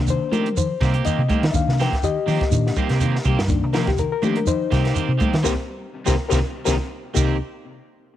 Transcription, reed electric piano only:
Already playing: D#3 A#3 D4
0.10 C5
0.33 A#4
0.57 C5
1.05 D#5
1.51 D#3 A#3 D4 E5
1.55 F5
1.81 G5
2.04 G4 D#5
2.50 D#3 A#3 D4
3.47 D#3 A#3 D4
3.73 A#4
3.88 G4
3.99 A#4
4.12 A#4
4.22 D#3 A#3 D4 G4
4.37 A#4
4.47 D#4 C5
5.44 G4 A#4 C5
6.06 G4 A#4 C5
6.29 G4 A#4 C5
6.65 G4 A#4 C5
7.15 A#3 D#4 G4

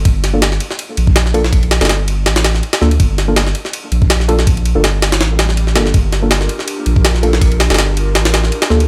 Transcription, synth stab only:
0.34 A#3 D4 F4 A4
1.34 A#3 D4 F4 A4
1.81 A#3 D4 F4 A4
2.81 A#3 D4 F4 A4
3.28 A#3 D4 F4 A4
4.28 A#3 D4 F4 A4
4.75 A#3 D4 F4 A4
5.76 A#3 D4 F4 A4
6.23 A#3 D4 F4 A4
7.23 A#3 D4 F4 A4
7.70 A#3 D4 F4 A4
8.70 A#3 D4 F4 A4

